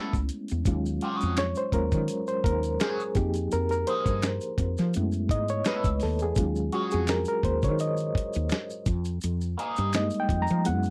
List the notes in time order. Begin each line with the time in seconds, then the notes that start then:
Already playing: G#3 A3 B3 C#4 E4 A4
0.13 C#2, kick, maracas
0.29 closed hi-hat, maracas
0.48 E2, closed hi-hat, maracas
0.65 D#2 F#3 G#3 C#4 F4, kick, closed hi-hat, maracas
0.86 maracas
1.01 F4 G4 C5, closed hi-hat
1.15 F#4 G#4 C#5
1.21 F2, closed hi-hat, maracas
1.37 C#5, finger snap, snare, closed hi-hat, maracas
1.55 C5, closed hi-hat, maracas
1.72 D#2 F#3 G#3 C#4 F4 A#4, kick, closed hi-hat
1.92 D#3, kick, closed hi-hat, maracas
2.08 closed hi-hat, maracas
2.27 C5, closed hi-hat, maracas
2.44 D#2 A#4, kick, closed hi-hat
2.63 closed hi-hat, maracas
2.80 F#4 G#4 C#5, finger snap, snare, closed hi-hat, maracas
3.00 maracas
3.15 F2 F3 A#3 D#4 G4 G#4, kick, closed hi-hat, maracas
3.34 closed hi-hat, maracas
3.51 F2 A#4, closed hi-hat, maracas
3.69 A#4, closed hi-hat, maracas
3.87 A#3 D#4 G#4 C5, closed hi-hat
4.06 G2, kick, closed hi-hat, maracas
4.22 finger snap, snare, closed hi-hat, maracas
4.41 closed hi-hat, maracas
4.58 F2, kick, closed hi-hat
4.77 F3, snare, closed hi-hat, maracas
4.94 F#2 G#3 A3 B3 E4, closed hi-hat, maracas
5.12 closed hi-hat, maracas
5.29 G#2 D#5, kick, closed hi-hat
5.48 C#5, closed hi-hat, maracas
5.64 B3 E4 A4 B4, finger snap, snare, closed hi-hat, maracas
5.84 C#2, kick, closed hi-hat, maracas
6.00 D#2 A4, snare, open hi-hat, maracas
6.19 E2 G#4, closed hi-hat, maracas
6.35 D#2 F#3 G#3 C#4 F4, kick, closed hi-hat, maracas
6.56 maracas
6.72 F#4 G#4 C#5, closed hi-hat
6.91 F2 G#4, closed hi-hat, maracas
7.07 A#4, finger snap, snare, closed hi-hat, maracas
7.25 A#4, closed hi-hat, maracas
7.43 D#2 C5, kick, closed hi-hat
7.62 D#3 C#5, kick, closed hi-hat, maracas
7.79 D#5, closed hi-hat, maracas
7.97 closed hi-hat, maracas
8.15 muted fretless electric bass stroke, kick, closed hi-hat
8.33 D#2, closed hi-hat, maracas
8.49 finger snap, snare, closed hi-hat, maracas
8.70 maracas
8.86 F2, kick, closed hi-hat, maracas
9.05 closed hi-hat, maracas
9.21 F2, closed hi-hat, maracas
9.41 maracas
9.58 A#3 D#4 G#4, closed hi-hat
9.76 G2, closed hi-hat, maracas
9.93 G3 G#3 A#3 D#4 D#5, finger snap, snare, closed hi-hat, maracas
10.10 closed hi-hat, maracas
10.20 G5
10.29 F2, kick, closed hi-hat
10.42 A#5
10.47 F3, closed hi-hat, maracas
10.65 F#2 F#3 G#3 B3 E4 F#5, closed hi-hat, maracas
10.83 closed hi-hat, maracas